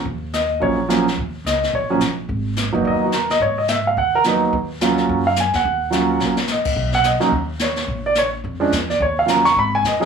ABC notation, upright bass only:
X:1
M:4/4
L:1/8
Q:"Swing" 1/4=215
K:Ebm
V:1 name="Upright bass" clef=bass
E,,4 B,,,4 | E,,2 D,,2 B,,,2 B,,,2 | A,,,3 G,,, E,,4 | A,,4 E,,4 |
E,,4 G,,3 _F,, | E,,4 B,,,4 | =B,,,3 z ^D,,4 | B,,,4 F,,2 _F,,2 |
E,,4 A,,,2 _F,,2 |]